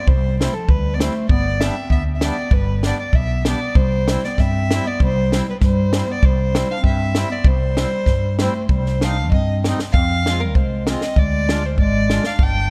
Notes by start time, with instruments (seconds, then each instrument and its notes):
0.07 fretless electric bass C2, clarinet G3, fiddle C5, kick
0.39 accordion G3 C4 E4, clarinet A3, fiddle C5, snare, hi-hat pedal
0.54 clarinet F3, fiddle A4
0.69 fretless electric bass D2, clarinet G3, fiddle B4, kick
0.94 clarinet B3, fiddle D5
0.98 accordion G3 C4 E4, clarinet A3, fiddle C5, snare, hi-hat pedal
1.29 fretless electric bass G1, clarinet B3, fiddle D5, kick
1.61 accordion G3 B3 D4, clarinet C4, fiddle E5, snare, hi-hat pedal
1.90 fretless electric bass D2, clarinet B3, fiddle E5, kick
2.15 clarinet C4, fiddle E5
2.21 accordion G3 B3 D4, clarinet B3, fiddle D5, snare, hi-hat pedal
2.51 fretless electric bass G1, clarinet G3, fiddle B4, kick
2.83 accordion G3 B3 D4, clarinet B3, fiddle D5, snare, hi-hat pedal
2.98 clarinet B3, fiddle D5
3.13 fretless electric bass B1, clarinet B3, fiddle E5, kick
3.45 accordion G3 B3 D4, clarinet B3, fiddle D5, snare, hi-hat pedal
3.75 fretless electric bass C2, clarinet G3, fiddle C5, kick
4.08 accordion G3 C4 E4, snare, hi-hat pedal
4.24 clarinet B3, fiddle D5, snare
4.37 fretless electric bass G2, clarinet C4, fiddle E5, kick, snare
4.71 accordion G3 C4 E4, snare, hi-hat pedal
4.85 clarinet B3, fiddle D5
5.00 fretless electric bass C2, clarinet G3, fiddle C5, kick
5.32 accordion G3 C4 E4, snare, hi-hat pedal
5.47 clarinet G3, fiddle B4
5.61 fretless electric bass G2, clarinet G3, fiddle C5, kick, snare
5.93 accordion G3 C4 E4, snare, hi-hat pedal
6.08 clarinet B3, fiddle D5
6.22 fretless electric bass C2, clarinet G3, fiddle C5, kick
6.55 accordion G3 C4 E4, snare, hi-hat pedal
6.71 clarinet D4, fiddle F5
6.80 fretless electric bass G2, clarinet C4, kick
6.85 fiddle E5
7.15 accordion G3 C4 E4, snare, hi-hat pedal
7.29 clarinet B3, fiddle D5
7.44 fretless electric bass C2, clarinet G3, fiddle C5, kick
7.77 accordion G3 C4 E4, snare, hi-hat pedal
8.06 fretless electric bass G2, kick, snare
8.39 accordion G3 C4 E4, clarinet A3, fiddle C5, snare, hi-hat pedal
8.69 fretless electric bass C2, clarinet G3, fiddle C5, kick
8.86 snare
9.01 accordion G3 C4 D#4, clarinet D4, fiddle F5, snare
9.32 fretless electric bass G2, clarinet C4, fiddle D#5, kick
9.64 accordion G3 C4 D#4, clarinet C4, fiddle D#5, snare
9.79 snare
9.92 fretless electric bass F2, clarinet C4, fiddle F5, kick
10.26 accordion G#3 C4 F4, snare
10.40 clarinet G3, fiddle A#4
10.55 fretless electric bass C2, clarinet G#3, fiddle C5, kick
10.87 accordion G#3 C4 F4, clarinet C4, fiddle D#5, snare
11.01 snare
11.16 fretless electric bass D2, clarinet G#3, fiddle D5, kick
11.49 accordion G#3 D4 F4, snare
11.63 clarinet G#3, fiddle C5
11.78 fretless electric bass G#1, clarinet G#3, fiddle D5, kick
12.10 accordion G#3 D4 F4, snare
12.24 clarinet D4, fiddle F5, snare
12.38 fretless electric bass G1, clarinet D4, kick
12.43 fiddle G5